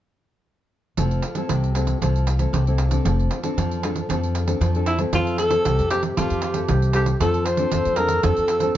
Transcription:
0.97 upright bass F1, nylon-string guitar F3 C4 E4 A4, pandeiro
1.11 pandeiro
1.22 pandeiro
1.35 nylon-string guitar C4 E4 A4, pandeiro
1.49 upright bass C2, nylon-string guitar C3, pandeiro
1.64 pandeiro
1.75 nylon-string guitar C4 E4 A4, pandeiro
1.87 pandeiro
2.01 upright bass C2, nylon-string guitar F3 C4 E4 A4, pandeiro
2.16 pandeiro
2.27 pandeiro
2.39 nylon-string guitar C4 E4 A4, pandeiro
2.53 upright bass C2, nylon-string guitar C3, pandeiro
2.67 nylon-string guitar C4 E4 A4, pandeiro
2.78 pandeiro
2.91 nylon-string guitar C4 D4 A4, pandeiro
3.05 upright bass F1, nylon-string guitar F3, pandeiro
3.20 pandeiro
3.31 pandeiro
3.43 nylon-string guitar C4 D4 A4, pandeiro
3.57 upright bass F2, nylon-string guitar F3, pandeiro
3.71 pandeiro
3.83 nylon-string guitar C4 D4 A4, pandeiro
3.96 pandeiro
4.09 upright bass F2, nylon-string guitar F3 C4 D4 A4, pandeiro
4.23 pandeiro
4.35 pandeiro
4.47 nylon-string guitar C4 D4 A4, pandeiro
4.61 upright bass F2, nylon-string guitar F3, pandeiro
4.75 nylon-string guitar C4 D4 A4, pandeiro
4.86 alto saxophone E4, pandeiro
4.99 nylon-string guitar C4 E4 A4, pandeiro
5.12 upright bass F2, nylon-string guitar F3, alto saxophone F4, bansuri A#4, pandeiro
5.17 bansuri A4
5.27 pandeiro
5.38 alto saxophone A4, pandeiro
5.50 nylon-string guitar C4 E4 A4, pandeiro
5.63 upright bass C2, nylon-string guitar C3, bansuri G4 G#4, pandeiro
5.79 upright bass F2, pandeiro
5.90 nylon-string guitar C4 E4 A4, alto saxophone G4, pandeiro
6.03 pandeiro
6.17 upright bass F2, nylon-string guitar F3 C4 A4, alto saxophone F4, pandeiro
6.30 upright bass F2, pandeiro
6.42 pandeiro
6.54 nylon-string guitar C4 E4 A4, pandeiro
6.68 upright bass C2, nylon-string guitar C3, pandeiro
6.82 pandeiro
6.93 nylon-string guitar C4 E4 A4, alto saxophone G4, pandeiro
7.06 pandeiro
7.20 upright bass F2, nylon-string guitar F3 C4 D4 A4, bansuri F4, alto saxophone A4, pandeiro
7.34 pandeiro
7.45 alto saxophone C5, pandeiro
7.57 nylon-string guitar C4 D4 A4, pandeiro
7.71 upright bass F2, nylon-string guitar F3, bansuri A4, pandeiro
7.85 upright bass F2, pandeiro
7.96 nylon-string guitar C4 D4 A4, alto saxophone A#4, pandeiro
8.08 pandeiro
8.23 upright bass F2, nylon-string guitar F3 C4 D4 A4, alto saxophone A4, pandeiro
8.36 upright bass F2, pandeiro
8.48 pandeiro
8.60 nylon-string guitar C4 D4 A4, pandeiro

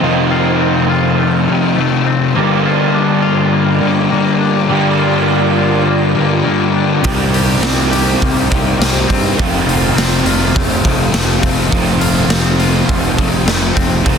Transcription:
Already playing: ambient pad D#4 C5
0.00 overdriven electric guitar F2 C3 D#3 A3 D#4 F4, distorted electric guitar F2 C3, clean electric guitar D#3, ambient pad A4 F5
0.04 distorted electric guitar F3
0.31 clean electric guitar F4
0.61 clean electric guitar C4
0.89 clean electric guitar F4
1.19 clean electric guitar A3
1.47 distorted electric guitar F2 C3 F3, clean electric guitar D#3
1.76 distorted electric guitar F2 C3 F3, clean electric guitar A3
2.07 clean electric guitar C4
2.34 distorted electric guitar G2 D3 G3, overdriven electric guitar G2 D3 G3 A#3 D4 G4, clean electric guitar A#3, ambient pad F4 A#4 D5 G5
2.66 clean electric guitar F4
2.94 clean electric guitar D4
3.22 clean electric guitar F4
3.53 clean electric guitar A#3
3.80 distorted electric guitar G2 D3 G3, clean electric guitar A#3
4.10 distorted electric guitar G2 D3 G3, clean electric guitar A#3
4.40 clean electric guitar D4
4.68 distorted electric guitar G2 D3 G3, overdriven electric guitar G2 D3 G3 A#3 D4 G4, clean electric guitar A#3
4.99 clean electric guitar F4
5.28 clean electric guitar D4
5.57 clean electric guitar F4
5.87 clean electric guitar A#3
6.15 distorted electric guitar G2 D3 G3, clean electric guitar A#3
6.43 distorted electric guitar G2 D3 G3, clean electric guitar A#3
6.76 clean electric guitar D4
7.02 fingered electric bass C2, distorted electric guitar C3 G3 C4, overdriven electric guitar C3 D#3 G3 C4 G4, kick, open hi-hat
7.06 ambient pad D#4 C5
7.34 clean electric guitar G4, open hi-hat
7.61 fingered electric bass C2, clean electric guitar C4, snare, open hi-hat
7.91 clean electric guitar G4, open hi-hat
8.21 fingered electric bass C2, clean electric guitar A#3, kick, open hi-hat
8.49 fingered electric bass C2, distorted electric guitar C3 G3 C4, clean electric guitar D#3, kick, open hi-hat
8.78 fingered electric bass C2, distorted electric guitar C3 G3 C4, clean electric guitar A#3, snare, open hi-hat
9.08 fingered electric bass G2, clean electric guitar C4, kick, open hi-hat
9.37 fingered electric bass F1, overdriven electric guitar F2 C3 D#3 A3 C4 F4, distorted electric guitar F2 C3 F3, clean electric guitar D#3, ambient pad A4 C5 F5, kick, open hi-hat
9.66 fingered electric bass F1, clean electric guitar F4, open hi-hat
9.95 fingered electric bass F1, clean electric guitar C4, snare, open hi-hat
10.25 fingered electric bass F1, clean electric guitar F4, open hi-hat
10.55 fingered electric bass F1, clean electric guitar A3, kick, open hi-hat
10.83 fingered electric bass F1, distorted electric guitar F2 C3 F3, clean electric guitar D#3, kick, open hi-hat
11.12 fingered electric bass F1, distorted electric guitar F2 C3 F3, clean electric guitar A3, snare, open hi-hat
11.41 fingered electric bass F1, clean electric guitar C4, kick, open hi-hat
11.69 fingered electric bass F1, overdriven electric guitar F2 C3 D#3 A3 C4 F4, distorted electric guitar F2 C3, clean electric guitar D#3, kick, open hi-hat
11.73 distorted electric guitar F3
12.00 clean electric guitar F4, open hi-hat
12.29 fingered electric bass F1, clean electric guitar C4, snare, open hi-hat
12.59 clean electric guitar F4, open hi-hat
12.88 fingered electric bass F1, clean electric guitar A3, ambient pad G5, kick, open hi-hat
13.17 fingered electric bass F1, distorted electric guitar F2 C3 F3, clean electric guitar D#3, kick, open hi-hat
13.45 fingered electric bass F1, distorted electric guitar F2 C3, clean electric guitar A3, snare, open hi-hat
13.49 distorted electric guitar F3
13.75 fingered electric bass F1, clean electric guitar C4, kick, open hi-hat
14.03 fingered electric bass F1, overdriven electric guitar F2 C3 D#3 A3 C4 F4, distorted electric guitar F2 C3, clean electric guitar D#3, kick, open hi-hat
14.08 distorted electric guitar F3

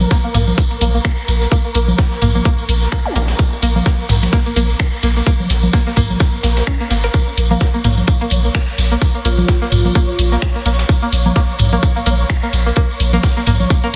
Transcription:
Already playing: synth texture A#4
0.01 tambourine, high conga
0.11 synth pluck A#3, kick, snare, ride, tambourine
0.24 synth pluck A#3, tambourine
0.34 sub bass A#1, synth pluck A#3, mid tom, open hi-hat, ride, tambourine
0.47 tambourine, high conga
0.58 kick, ride, tambourine
0.71 ride, tambourine
0.81 sub bass A#1, synth pluck A#3, open hi-hat, ride, tambourine, high conga
0.95 synth pluck A#3, tambourine
1.05 synth pluck A#3, finger snap, kick, snare, ride, tambourine
1.18 tambourine
1.27 sub bass A#1, snare, open hi-hat, ride, tambourine
1.41 snare, tambourine
1.52 synth pluck A#3, kick, ride, tambourine
1.64 synth pluck A#3, tambourine
1.74 sub bass A#1, synth pluck A#3, open hi-hat, ride, tambourine
1.88 tambourine, high conga
1.98 kick, snare, ride, tambourine
2.12 snare, tambourine
2.21 sub bass A#1, synth pluck A#3, mid tom, open hi-hat, ride, tambourine
2.34 synth pluck A#3, tambourine, high conga
2.45 synth pluck A#3, kick, ride, tambourine
2.58 tambourine
2.69 sub bass A#1, open hi-hat, ride, tambourine
2.82 snare, tambourine
2.92 synth pluck A#3, finger snap, kick, snare, ride, tambourine
3.06 synth pluck A#3, tambourine, zap
3.15 sub bass A#1, synth pluck A#3, open hi-hat, ride, tambourine
3.28 snare, ride, tambourine
3.39 kick, ride, tambourine
3.53 tambourine
3.62 sub bass A#1, synth pluck A#3, open hi-hat, ride, tambourine
3.76 synth pluck A#3, tambourine, high conga
3.86 synth pluck A#3, kick, snare, ride, tambourine
3.99 tambourine
4.09 sub bass A#1, snare, mid tom, open hi-hat, ride, tambourine
4.23 snare, ride, tambourine, high conga
4.33 synth pluck A#3, kick, snare, ride, tambourine
4.46 synth pluck A#3, ride, tambourine
4.56 sub bass A#1, synth pluck A#3, open hi-hat, ride, tambourine, high conga
4.70 tambourine
4.79 finger snap, kick, snare, ride, tambourine
4.93 tambourine
5.03 sub bass A#1, synth pluck A#3, snare, open hi-hat, ride, tambourine
5.16 synth pluck A#3, snare, tambourine
5.27 synth pluck A#3, kick, ride, tambourine
5.40 tambourine, high conga
5.50 sub bass A#1, snare, open hi-hat, ride, tambourine
5.63 tambourine, high conga
5.73 synth pluck A#3, kick, snare, ride, tambourine
5.86 synth pluck A#3, snare, tambourine
5.96 sub bass A#1, synth pluck A#3, kick, mid tom, open hi-hat, ride, tambourine
6.10 tambourine, high conga
6.20 kick, snare, ride, tambourine
6.34 tambourine
6.43 sub bass A#1, synth pluck A#3, snare, open hi-hat, ride, tambourine
6.57 snare, ride, tambourine
6.67 synth pluck C#4, finger snap, kick
6.80 synth pluck A#3, tambourine
6.90 sub bass G#1, synth pluck A#3, snare, open hi-hat, ride, tambourine
7.04 synth pluck A#4, snare, ride, tambourine
7.14 synth pluck A#3, synth texture C#5, kick, ride, tambourine
7.27 tambourine
7.37 sub bass A#1, open hi-hat, ride, tambourine
7.51 synth pluck A#3, tambourine, high conga
7.60 kick, snare, ride, tambourine
7.74 synth pluck A#3, tambourine
7.84 sub bass A#1, synth pluck A#3, mid tom, open hi-hat, ride, tambourine
7.97 tambourine, high conga
8.07 kick, ride, tambourine
8.21 synth pluck A#3, ride, tambourine
8.30 sub bass A#1, open hi-hat, ride, tambourine, high conga
8.45 synth pluck A#3, tambourine
8.55 synth pluck A#3, finger snap, kick, snare, ride, tambourine
8.68 tambourine
8.78 sub bass A#1, snare, open hi-hat, ride, tambourine
8.91 synth pluck A#3, snare, tambourine
9.02 kick, ride, tambourine
9.15 synth pluck A#3, tambourine
9.25 sub bass A#1, synth pluck A#3, vibraphone F4, open hi-hat, ride, tambourine
9.38 vibraphone F4, tambourine, high conga
9.48 kick, snare, ride, tambourine
9.62 synth pluck A#3, snare, tambourine
9.72 sub bass A#1, vibraphone F4, mid tom, open hi-hat, ride, tambourine
9.85 synth pluck A#3, tambourine, high conga
9.95 synth pluck A#3, kick, ride, tambourine
10.09 tambourine
10.19 sub bass A#1, open hi-hat, ride, tambourine
10.32 synth pluck A#3, snare, tambourine
10.42 finger snap, kick, snare, ride, tambourine
10.56 synth pluck A#3, tambourine
10.66 sub bass A#1, synth pluck A#3, open hi-hat, ride, tambourine
10.79 snare, ride, tambourine
10.89 kick, ride, tambourine
11.02 synth pluck A#3, tambourine
11.12 sub bass A#1, open hi-hat, ride, tambourine
11.26 synth pluck A#3, tambourine, high conga
11.36 synth pluck A#3, kick, snare, ride, tambourine
11.49 tambourine
11.59 sub bass A#1, mid tom, open hi-hat, ride, tambourine
11.72 synth pluck A#3, tambourine, high conga
11.83 kick, ride, tambourine
11.96 synth pluck A#3, ride, tambourine
12.06 sub bass A#1, synth pluck A#3, open hi-hat, ride, tambourine, high conga
12.20 tambourine
12.29 finger snap, kick, snare, ride, tambourine
12.43 synth pluck A#3, tambourine
12.53 sub bass A#1, snare, open hi-hat, ride, tambourine
12.66 synth pluck A#3, snare, tambourine
12.76 synth pluck A#3, kick, ride, tambourine
12.90 tambourine
13.00 sub bass A#1, open hi-hat, ride, tambourine
13.13 synth pluck A#3, tambourine, high conga
13.23 kick, snare, ride, tambourine
13.37 synth pluck A#3, snare, tambourine
13.46 sub bass A#1, synth pluck A#3, mid tom, open hi-hat, ride, tambourine
13.60 tambourine, high conga
13.70 kick, ride, tambourine
13.83 synth pluck A#3, tambourine

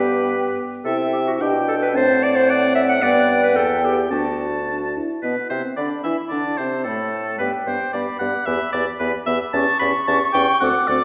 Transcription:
Already playing: bassoon G2, french horn B3, clarinet G4, oboe B4, flute G5
0.85 bassoon C3, french horn E4, clarinet A4, oboe E5, flute G5
1.12 clarinet G4
1.27 clarinet F#4
1.40 bassoon B2, french horn D4, clarinet G4, oboe G5, flute G5
1.68 clarinet A4
1.83 clarinet B4
1.95 bassoon A2, french horn C4, clarinet C5, flute F#5, oboe A5
2.23 clarinet D5
2.36 clarinet C5
2.49 clarinet D5, oboe F#5
2.75 clarinet E5
2.89 clarinet F#5
3.02 bassoon G2, french horn B3, clarinet D5, flute G5
3.43 clarinet B4
3.56 bassoon E2, french horn B3, clarinet A4, oboe G5, flute G5
3.85 clarinet G4
4.11 bassoon D2, french horn D4, clarinet F#4, oboe A5, flute A5
4.68 french horn D4
4.96 french horn E4
5.22 bassoon B2, clarinet B3, french horn B3, oboe B4
5.50 bassoon C3, clarinet C4, french horn C4, oboe C5
5.76 bassoon D3, clarinet D4, french horn D4, oboe D5, flute B5
6.04 bassoon E3, clarinet E4, french horn E4, oboe E5
6.29 bassoon D3, clarinet D4, french horn D4, oboe D5, flute A5
6.57 bassoon C3, clarinet C4, french horn C4, oboe C5
6.84 bassoon A2, clarinet A3, french horn A3, oboe A4, flute B5
7.14 flute A5
7.38 bassoon G2, french horn B3, clarinet G4, oboe B4, flute G5
7.67 bassoon G2, french horn B3, clarinet G4, oboe C5
7.93 bassoon G2, french horn B3, clarinet G4, oboe D5, flute B5
8.19 bassoon G2, french horn B3, clarinet G4, oboe F#5
8.46 bassoon E2, french horn B3, clarinet G4, oboe E5, flute B5
8.72 bassoon E2, french horn B3, clarinet G4, oboe D5
9.00 bassoon E2, french horn B3, clarinet G4, oboe B4
9.26 bassoon E2, french horn B3, clarinet G4, oboe E5
9.53 bassoon E2, french horn C#4, clarinet G4, oboe A5, flute C#6
9.80 bassoon E2, french horn C#4, clarinet G4, oboe B5
10.07 bassoon E2, french horn C#4, clarinet G4, oboe A5
10.34 bassoon E2, french horn C#4, clarinet G4, oboe G5
10.61 bassoon D2, french horn C4, clarinet A4, oboe F#5, flute D6
10.88 bassoon D2, french horn C4, clarinet A4, oboe D5

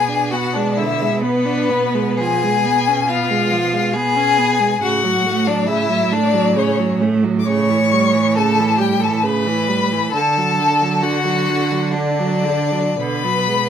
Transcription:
Already playing: cello B2, violin G#4 G#5
0.08 viola D4
0.31 viola B3, violin F#4 F#5
0.54 viola G#3, violin D4 D5
0.76 viola D3, violin E4 E5
1.01 viola G#3
1.21 violin B3 B4, viola B3
1.46 viola D4
1.70 viola B3
1.95 viola G#3
2.17 viola F3, violin G#4 G#5
2.43 viola G#3
2.65 viola B3
2.88 viola C#4
3.07 viola B3, violin F4 F5
3.30 viola G#3
3.51 viola F3
3.73 viola G#3
3.94 viola B3, violin G#4 G#5
4.16 viola C#4
4.38 viola B3
4.60 viola G#3
4.81 cello A2, viola C#3, violin F#4 F#5
5.04 viola F#3
5.26 viola A3
5.47 viola F#3, violin D4 D5
5.67 viola C#3, violin E4 E5
5.89 viola F#3
6.12 viola A3, violin D4 D5
6.34 viola F#3
6.55 viola C#3, violin C#4 C#5
6.79 viola F#3
7.01 viola A3
7.24 viola F#3
7.39 violin D6
7.45 viola C#3, violin C#5 C#6
7.70 viola E3
7.93 viola G3
8.14 viola E3
8.35 viola C#3, violin A4 A5
8.60 viola E3
8.78 viola G3, violin G4 G5
9.00 viola E3, violin A4 A5
9.21 viola C#3, violin B4 B5
9.47 viola E3
9.68 viola G3
9.92 viola E3
10.11 cello D3, violin A4 A5
10.16 viola D3
10.38 viola F#3
10.60 viola D3
10.82 viola F#3
11.02 viola D3, violin F#4 F#5
11.25 viola F#3
11.48 viola D3
11.71 viola F#3
11.92 viola D3, violin D4 D5
12.19 viola F#3
12.45 viola D3
12.72 viola F#3
12.96 cello B2, viola D3, violin B4 B5
13.24 viola F#3
13.47 viola G#3

